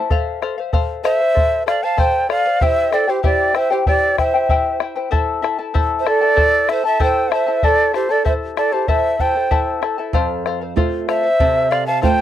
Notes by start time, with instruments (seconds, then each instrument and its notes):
Already playing: charango E4 A5
0.10 charango A4 C5 F5, bombo low
0.42 charango A4 C5 F5, bombo rim
0.58 charango C5 F5
0.73 charango A4 C5 F5, bombo low
1.04 charango A4 C5 F5, pan flute C5, quena E5, bombo rim
1.19 charango C5 F5
1.35 charango A4 C5, bombo low
1.66 charango A4 C5 F5, pan flute D5, quena F5, bombo rim
1.83 charango C5 F5, pan flute F5, quena A5
1.97 charango A4 C5 F5, pan flute C5, quena G5, bombo low
2.29 charango A4 C5 F5, pan flute D5, quena F5, bombo rim
2.45 charango C5 F5
2.61 charango E4 G4 C5 E5 G5, pan flute C5, quena E5, bombo low
2.92 charango E4 C5 E5 G5, pan flute A4, quena D5, bombo rim
3.07 charango E4 C5 G5, pan flute G4, quena C5
3.23 charango E4 G4 C5 E5 G5, pan flute G4, quena D5, bombo low
3.54 charango E4 C5 E5 G5, pan flute C5, quena E5, bombo rim
3.70 charango E4 C5 G5, pan flute G4, quena C5
3.86 charango E4 G4 C5 E5 G5, pan flute G4, quena D5, bombo low
4.18 charango E4 C5 E5 G5, pan flute C5, quena E5, bombo rim, bombo low
4.34 charango E4 C5 G5
4.49 charango E4 G4 C5 E5 G5, bombo low
4.80 charango E4 C5 E5 G5, bombo rim
4.96 charango E4 C5 G5
5.11 charango E4 A4 C5 E5 A5, bombo low
5.42 charango E4 A4 E5 A5, bombo rim
5.58 charango E4 A4 A5
5.74 charango E4 A4 C5 E5 A5, bombo low
5.99 pan flute C5, quena E5
6.05 charango E4 A4 E5 A5, pan flute A4, quena D5, bombo rim
6.21 charango E4 A4 A5
6.36 charango E4 A4 C5 E5 A5, bombo low
6.68 charango E4 A4 E5 A5, pan flute C5, quena E5, bombo rim
6.84 charango E4 A4 A5, pan flute E5, quena A5
7.00 charango E4 A4 C5 E5 A5, pan flute C5, quena G5, bombo low
7.31 charango E4 A4 E5 A5, pan flute C5, quena E5, bombo rim
7.47 charango E4 A4 A5
7.63 charango E4 A4 C5 E5 A5, pan flute A4, quena D5, bombo low
7.93 charango E4 A4 E5 A5, pan flute G4, quena C5, bombo rim
8.09 charango E4 A4 A5, pan flute A4, quena D5
8.25 charango E4 A4 C5 E5 A5, pan flute C5, quena E5, bombo low
8.57 charango E4 A4 E5 A5, pan flute A4, quena D5, bombo rim
8.72 charango E4 A4 A5, pan flute G4, quena C5
8.88 charango E4 A4 C5 E5 A5, pan flute C5, quena E5, bombo low
9.18 charango E4 A4 E5 A5, pan flute C5, quena G5, bombo low
9.35 charango E4 A4 A5
9.51 charango E4 A4 C5 E5 A5, bombo low
9.82 charango E4 A4 E5 A5, bombo rim
9.98 charango E4 A4 A5
10.13 nylon-string guitar F2, charango A4 C5 F5, bombo low
10.46 charango A4 C5 F5, bombo rim
10.61 charango C5 F5
10.76 nylon-string guitar A3 C4 F4, charango A4 C5 F5, bombo low
11.08 charango A4 C5 F5, pan flute C5, quena E5, bombo rim
11.23 charango C5 F5
11.40 nylon-string guitar C3, charango A4 C5, bombo low
11.71 charango A4 C5 F5, pan flute D5, quena F5, bombo rim
11.87 charango C5 F5, pan flute F5, quena A5
12.01 nylon-string guitar A3 C4 F4, charango A4 C5 F5, pan flute C5, quena G5, bombo low